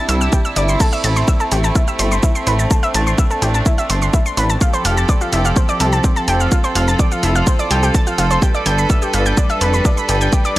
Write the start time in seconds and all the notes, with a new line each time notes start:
Already playing: C3 G3 D4 E4
0.09 C2 E5 E6, open hi-hat, shaker
0.21 E6, shaker
0.32 G4 G5, kick, shaker
0.45 E6, shaker
0.56 G1 D5 D6, open hi-hat, shaker
0.69 C6, shaker
0.80 A3 C4 A4 A5, kick, crash, shaker
0.92 E5 E6, shaker
1.04 A1 A5 A6, open hi-hat, shaker
1.16 C6, shaker
1.28 E5 E6, kick, shaker
1.40 A4 A5, shaker
1.52 A1 G4 G5, open hi-hat, shaker
1.64 A5 A6, shaker
1.75 E4 E5, kick, shaker
1.88 E5 E6, shaker
1.99 G1 C5 C6, open hi-hat, shaker
2.12 C6, shaker
2.23 E4 E5, kick, shaker
2.35 C6, shaker
2.47 A1 B4 B5, open hi-hat, shaker
2.59 A5 A6, shaker
2.71 D4 A4 A5, kick, shaker
2.83 E5 E6, shaker
2.94 A1 A5 A6, open hi-hat, shaker
3.07 C6, shaker
3.18 E5 E6, kick, shaker
3.31 A4 A5, shaker
3.42 A1 G4 G5, open hi-hat, shaker
3.54 A5 A6, shaker
3.66 E4 E5, kick, shaker
3.78 E5 E6, shaker
3.90 G1 C5 C6, open hi-hat, shaker
4.02 C6, shaker
4.13 E4 E5, kick, shaker
4.26 C6, shaker
4.37 A1 B4 B5, open hi-hat, shaker
4.50 A5 A6, shaker
4.61 F3 C4 F4 G4 A4 F5, kick, shaker
4.73 C5 C6, shaker
4.85 F1 F5 F6, open hi-hat, shaker
4.97 A5 A6, shaker
5.09 D5 D6, kick, shaker
5.21 F4 F5, shaker
5.33 F1 E4 E5, open hi-hat, shaker
5.45 F5 F6, shaker
5.56 C4 C5, kick, shaker
5.69 D5 D6, shaker
5.80 C2 A4 A5, open hi-hat, shaker
5.92 A5 A6, shaker
6.04 C4 C5, kick, shaker
6.16 A5 A6, shaker
6.28 F1 G4 G5, open hi-hat, shaker
6.40 F5 F6, shaker
6.52 F4 F5, kick, shaker
6.64 C5 C6, shaker
6.75 F1 F5 F6, open hi-hat, shaker
6.88 A5 A6, shaker
6.99 D5 D6, kick, shaker
7.12 F4 F5, shaker
7.23 F1 E4 E5, open hi-hat, shaker
7.35 F5 F6, shaker
7.47 C4 C5, kick, shaker
7.59 D5 D6, shaker
7.71 C2 G4 G5, open hi-hat, shaker
7.83 G4 G5, shaker
7.95 A5 A6, kick, shaker
8.07 F4 F5, shaker
8.18 F1 F4 F5, open hi-hat, shaker
8.31 C5 C6, shaker
8.42 G3 D4 G4 B4 G5, kick, shaker
8.54 D5 D6, shaker
8.66 G1 G5 G6, open hi-hat, shaker
8.78 B5, shaker
8.90 E5 E6, kick, shaker
9.02 G4 G5, shaker
9.14 G1 F4 F5, open hi-hat, shaker
9.26 G5 G6, shaker
9.37 D4 D5, kick, shaker
9.50 E5 E6, shaker
9.61 F1 B4 B5, open hi-hat, shaker
9.73 B5, shaker
9.85 D4 D5, kick, shaker
9.97 B5, shaker
10.09 G1 G4 G5, open hi-hat, shaker
10.21 G5 G6, shaker
10.33 G4 G5, kick, shaker
10.45 D5 D6, shaker